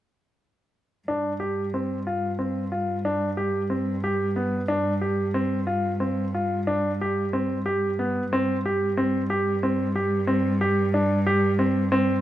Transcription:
1.08 G2 D4
1.40 G4
1.74 C4
2.07 F4
2.39 C4
2.72 F4
3.05 D4
3.37 G4
3.70 C4
4.04 G4
4.36 B3
4.68 D4
5.01 G4
5.34 C4
5.67 F4
6.00 C4
6.34 F4
6.67 D4
7.01 G4
7.33 C4
7.66 G4
7.99 B3
8.31 G2 C4
8.66 G4
8.97 C4
9.30 G4
9.63 C4
9.96 G4
10.27 C4
10.61 G4
10.94 D4
11.27 G4
11.59 C4
11.92 C4

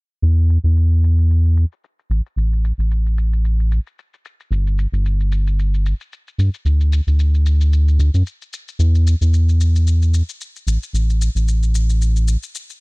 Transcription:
0.22 E2, shaker
0.38 shaker
0.50 shaker
0.64 E2, shaker
0.77 shaker
0.92 shaker
1.04 shaker
1.19 shaker
1.31 shaker
1.45 shaker
1.57 shaker
1.72 shaker
1.84 shaker
1.99 shaker
2.10 A1, shaker
2.26 shaker
2.36 A1, shaker
2.53 shaker
2.64 shaker
2.78 A1, shaker
2.91 shaker
3.06 shaker
3.18 shaker
3.33 shaker
3.45 shaker
3.60 shaker
3.72 shaker
3.87 shaker
3.99 shaker
4.14 shaker
4.25 shaker
4.40 shaker
4.51 G1, shaker
4.67 shaker
4.79 shaker
4.92 G1, shaker
5.06 shaker
5.20 shaker
5.32 shaker
5.47 shaker
5.59 shaker
5.74 shaker
5.86 shaker
6.01 shaker
6.13 shaker
6.28 shaker
6.38 G2, shaker
6.54 shaker
6.65 D2, shaker
6.81 shaker
6.93 shaker
7.07 D2, shaker
7.19 shaker
7.34 shaker
7.46 shaker
7.61 shaker
7.73 shaker
7.88 shaker
7.99 D2, shaker
8.14 F#2, shaker
8.27 shaker
8.42 shaker
8.53 shaker
8.68 shaker
8.79 E2, shaker
8.95 shaker
9.07 shaker
9.21 E2, shaker
9.34 shaker
9.49 shaker
9.61 shaker
9.76 shaker
9.87 shaker
10.02 shaker
10.14 shaker
10.29 shaker
10.41 shaker
10.56 shaker
10.67 A1, shaker
10.83 shaker
10.93 A1, shaker
11.10 shaker
11.22 shaker
11.35 A1, shaker
11.48 shaker
11.63 shaker
11.75 shaker
11.90 shaker
12.02 shaker
12.16 shaker
12.28 shaker
12.43 shaker
12.55 shaker
12.70 shaker

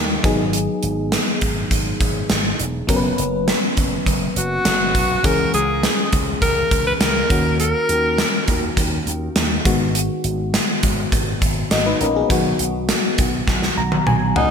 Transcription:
Already playing: D#2 F#3 C#4 D#4 A#4
0.23 G#1 F#3 B3 D#4 G#4, kick, closed hi-hat
0.53 closed hi-hat
0.83 G#1, closed hi-hat
1.12 snare, closed hi-hat
1.41 G#1, kick, closed hi-hat
1.71 G#1, kick, closed hi-hat
2.01 G#1, kick, closed hi-hat
2.30 G#1, snare, closed hi-hat
2.60 E1, closed hi-hat
2.87 F#1 F#3 B3 C#4 A#4, kick, closed hi-hat
2.96 B4
3.18 F#1, closed hi-hat
3.48 snare, closed hi-hat
3.77 F#1, kick, closed hi-hat
4.06 F#1, kick, closed hi-hat
4.36 F#1 F#4, closed hi-hat
4.65 F#1, snare, closed hi-hat
4.95 B1, kick, closed hi-hat
5.23 C#2 E3 G#3 C#4 G#4 A#4, kick, closed hi-hat
5.54 C#2 G#4, closed hi-hat
5.83 snare, closed hi-hat
6.12 C#2, kick, closed hi-hat
6.42 C#2 A#4, kick, closed hi-hat
6.71 C#2, kick, closed hi-hat
6.87 B4
7.01 C#2 A#4, snare, closed hi-hat
7.29 D#2 D#3 A#3 C#4 F#4, kick, closed hi-hat
7.60 A#4, closed hi-hat
7.89 D#2, closed hi-hat
8.18 snare, closed hi-hat
8.48 D#2, kick, closed hi-hat
8.77 D#2, kick, closed hi-hat
9.07 D#2, closed hi-hat
9.36 D#2, snare, closed hi-hat
9.64 G#1 D#3 G#3 B3 F#4, kick, closed hi-hat
9.95 closed hi-hat
10.24 G#1, closed hi-hat
10.54 snare, closed hi-hat
10.83 G#1, kick, closed hi-hat
11.12 G#1, kick, closed hi-hat
11.42 G#1, kick, closed hi-hat
11.71 G#1 F#4 D#5, snare, closed hi-hat
11.86 D#4 B4
12.01 A#1 C#4 A#4, closed hi-hat
12.16 B3 G#4
12.29 B1 D#3 F#3 B3 F#4, kick, closed hi-hat
12.59 B1, closed hi-hat
12.89 snare, closed hi-hat
13.18 B1, kick, closed hi-hat
13.48 B1, kick, snare
13.62 snare
13.77 B1 A#5
13.92 high tom
14.06 B1 G#5, mid tom
14.36 C#2 D#4 F#5, floor tom

